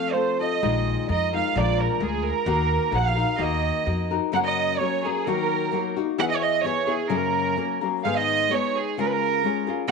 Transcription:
Already playing: F3 A3 C4 F4 A4 F5
0.14 A3 C4 F4 A4 C5
0.39 C4 F4 A4 D#5
0.62 A#1 A#2 D#3 G#3 D#4 F4 A#4
1.08 F2 G#3 D#4 F4 A#4 D#5
1.32 G#3 D#4 F4 A#4 F5
1.55 A#1 A#2 F3 G#3 D4 F4 A#4 D5
1.80 A#4
2.00 D2 G#3 D4 F4 G#4 A#4
2.26 A#4
2.46 D#2 D#3 A#3 D#4 F#4 A#4
2.91 A#1 A#3 D#4 F#4 A#4 F#5
3.06 F5
3.15 D#4 F#4 A#4
3.38 D#2 D#3 A#3 D#4 F#4 A#4 D#5
3.85 F2 A#3 D#4 F#4 A#4
4.11 D#4 F#4 A#4
4.32 F#2 C#3 F#3 A#3 C#4 A#4 F#5
4.46 D#5
4.79 F#3 A#3 C#4 A#4 C#5
5.03 F#3 A#3 C#4 G#4 A#4
5.26 D#3 F#3 A#3 D#4 F#4 A#4
5.72 F#3 A#3 D#4 F#4
5.96 A#3 D#4 F#4
6.18 E3 B3 E4 G#4 F#5
6.29 D#5
6.36 C#5
6.44 D#5
6.64 E3 B3 E4 G#4 C#5
6.87 B3 E4 G#4
7.09 F#2 C#3 F#3 A#3 C#4 A#4
7.56 F#3 A#3 C#4 A#4
7.81 F#3 A#3 C#4 A#4
8.04 G#2 D#3 G#3 B3 D#4 G#4 F5
8.17 D#5
8.50 G#3 B3 D#4 G#4 C#5
8.76 G#4
8.98 C#3 G#3 C#4 F4 G#4 A#4
9.05 B4
9.13 A#4
9.44 G#3 C#4 F4 G#4
9.67 C#4 F4 G#4
9.87 F#2

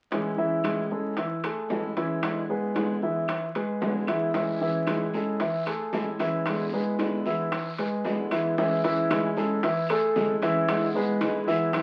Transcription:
0.11 A2 E3 G#3 C#4 E4 E5, high bongo, high timbale
0.37 E3 G#3 C#4 E4 E5
0.63 A2 E3 G#3 C#4 E4, high bongo, high timbale, low timbale, claves
0.90 G#3 C#4 E4 G#4 A4, high bongo
1.17 E3 E4 E5, muted steel-string acoustic guitar stroke, high bongo, high timbale
1.44 A3 G#4 A4, high bongo, high timbale, claves
1.68 A2 E3 G#3 C#4 E4, high bongo, low bongo, low timbale
1.95 E3 G#3 C#4 E4 E5, high bongo, high timbale
2.21 E2 B2 D3 G#3 B3 E4, high bongo, high timbale, claves
2.48 D3 G#3 B3 E4 G#4 B4
2.74 E2 B2 D3 G#3 B3 E4, high bongo, high timbale, low timbale
3.01 D3 E3 G#3 B3 E4 E5, high bongo
3.28 muted steel-string acoustic guitar stroke, high bongo, high timbale, claves
3.55 G#3 G#4 B4, high bongo, high timbale
3.81 E2 B2 D3 G#3 B3 E4, high bongo, low bongo, low timbale
4.07 D3 E3 G#3 B3 E4 E5, high bongo, high timbale, claves
4.34 A2 E3 G#3 C#4 E4 E5, high bongo, high timbale, long guiro
4.60 E3 G#3 C#4 E4 E5
4.86 A2 E3 G#3 C#4 E4, high bongo, high timbale, low timbale, short guiro, claves
5.13 G#3 C#4 E4 G#4 A4, high bongo, short guiro
5.40 E3 E4 E5, muted steel-string acoustic guitar stroke, high bongo, high timbale, long guiro
5.66 A3 G#4 A4, high bongo, high timbale, claves
5.93 A2 E3 G#3 C#4 E4, high bongo, low bongo, low timbale, short guiro
6.19 E3 G#3 C#4 E4 E5, high bongo, high timbale, short guiro
6.46 E2 B2 D3 G#3 B3 E4, high bongo, high timbale, long guiro, claves
6.72 D3 G#3 B3 E4 G#4 B4
6.98 E2 B2 D3 G#3 B3 E4, high bongo, high timbale, low timbale, short guiro
7.25 D3 E3 G#3 B3 E4 E5, high bongo, short guiro
7.51 muted steel-string acoustic guitar stroke, high bongo, high timbale, long guiro, claves
7.78 G#3 G#4 B4, high bongo, high timbale
8.04 E2 B2 D3 G#3 B3 E4, high bongo, low bongo, low timbale, short guiro
8.31 D3 E3 G#3 B3 E4 E5, high bongo, high timbale, short guiro, claves
8.57 A1 E3 G#3 C#4 E4 E5, high bongo, high conga, long guiro
8.84 E3 G#3 C#4 E4 E5, high bongo, high timbale
9.10 E3 G#3 C#4 E4, high bongo, high conga, high timbale, short guiro, claves
9.36 E2 G#3 C#4 E4 G#4 A4, high bongo, high conga, short guiro
9.63 E3 E4 E5, muted steel-string acoustic guitar stroke, high bongo, high conga, high timbale, long guiro
9.89 A3 G#4 A4, high conga, high timbale, claves
10.15 E2 E3 G#3 C#4 E4, high bongo, low bongo, high conga, short guiro
10.42 E3 G#3 C#4 E4 E5, high bongo, high timbale, short guiro
10.68 B2 D3 G#3 B3 E4, high bongo, high timbale, long guiro, claves
10.94 G#3 B3 E4 G#4 B4, high bongo, high conga
11.21 B2 D3 G#3 B3 E4, high bongo, high conga, high timbale, short guiro
11.47 B1 E3 G#3 B3 E4 E5, high bongo, high conga, short guiro
11.73 muted steel-string acoustic guitar stroke, high bongo, high conga, low conga, high timbale, long guiro, claves

